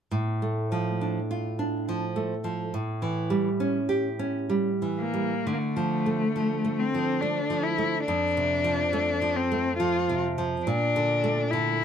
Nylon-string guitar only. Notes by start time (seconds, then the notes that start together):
0.11 A2
0.42 A3
0.72 F3
1.01 D4
1.31 F4
1.59 D4
1.89 F3
2.16 A3
2.44 F3
2.74 A2
3.02 E3
3.30 G3
3.60 C#4
3.89 G4
4.19 C#4
4.50 G3
4.82 E3
5.14 G3
5.47 D3
5.76 F3
6.06 A3
6.36 F3
6.65 A3
6.94 F3
7.22 A3
7.50 F3
7.78 A3
8.08 F2
8.37 C3
8.64 F3
8.93 A3
9.22 F3
9.52 A3
9.80 F3
10.09 C3
10.38 F3
10.67 A#2
10.96 D3
11.24 A3
11.53 D3